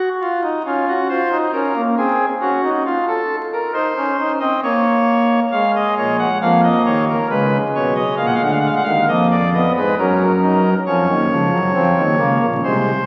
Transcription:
0.21 F4
0.43 D#4
0.66 C#4 F4
0.88 F#4
1.09 F4 C5
1.31 D#4
1.53 C#4 A#4
1.75 A#3
1.98 C4 G#4
2.41 C#4 F#4
2.63 D#4
2.85 F4
3.08 A4
3.53 A#4
3.74 D#4 C5
3.97 C#4
4.19 D#4
4.40 C4 D#5
4.63 A#3 C#5
5.52 G#3 F5
5.75 D#5
5.97 A#1 A#2 C#5
6.19 F#5
6.41 F2 F3 A#3 F5
6.63 D#5
6.86 D#2 D#3 C#5
7.09 A#4
7.30 C#2 C#3 G#3 B4
7.75 B1 B2 C#5
7.95 D#5
8.17 A#1 A#2 F5
8.26 F#5
8.34 F5
8.41 D2 D3 F#5
8.52 F5
8.60 F#5
8.67 F5
8.76 F#5
8.83 D#2 D#3 F5
9.08 F2 F3 A#3 D#5
9.31 D5
9.54 B3 D#5
9.77 G#2 G#3 B4
9.98 F#2 F#3 C#4 A#4
10.43 D#4
10.86 F2 F3 C#4 C#5
11.08 D#2 D#3
11.31 C#2 C#3 F3
11.52 F#2 F#3
11.74 F2 F3 C4
11.97 D#2 D#3
12.18 C#2 C#3 A#3
12.41 A#1 A#2
12.64 C2 C3 G#3 C5

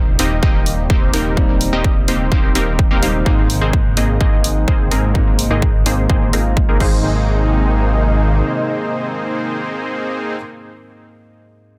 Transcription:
Already playing: D#1 C3 D#3 G3 A#3 C4 D#4
0.19 D#1 A#3 C4 D#4 G4 D#5, open hi-hat
0.43 D#1 A#3 C4 D#4 G4 D#5, kick
0.66 open hi-hat
0.90 D#1 A#3 C4 D#4 G4 C5, kick
1.13 D#1 G3 A#3 C4 D#4 G4 A#4, open hi-hat
1.36 G3 A#3 C4 D#4, kick
1.61 open hi-hat
1.73 D#1 A#3 C4 D#4 G4 D#5
1.84 kick
2.08 D#1 A#3 C4 D#4 G4 C5, open hi-hat
2.32 D#1 A#3 C4 D#4 G4 C5, kick
2.55 D#1 A#3 C4 D#4 G4 A#4, open hi-hat
2.79 kick
2.91 D#1 A#3 C4 D#4 G4 A#4
3.02 D#1 G3 A#3 C4 D#4 G4 F5, open hi-hat
3.25 G#1 G#2 G#3 A#3 C4 D#4 G#4 C5, kick
3.50 open hi-hat
3.61 G#1 A#3 C4 D#4 G#4 C5
3.73 kick
3.97 G#1 A#3 C4 D#4 G#4 D#5, open hi-hat
4.21 G#1 A#3 C4 D#4 G#4 D#5, kick
4.44 open hi-hat
4.68 G#1 A#3 C4 D#4 G#4 C5, kick
4.91 G#1 G#2 G#3 A#3 C4 D#4 G#4 A#4, open hi-hat
5.14 G#2 G#3 A#3 C4 D#4, kick
5.39 open hi-hat
5.51 G#1 A#3 C4 D#4 G#4 D#5
5.62 kick
5.86 G#1 A#3 C4 D#4 G#4 C5, open hi-hat
6.10 G#1 A#3 C4 D#4 G#4 C5, kick
6.33 G#1 G#2 G#3 A#3 C4 D#4 F4 G#4 A#4, open hi-hat
6.57 kick
6.69 G#1 A#3 C4 D#4 G#4 A#4
6.79 G#1 C3 D#3 G#3 A#3 C4 D#4 G#4 C5, kick, crash

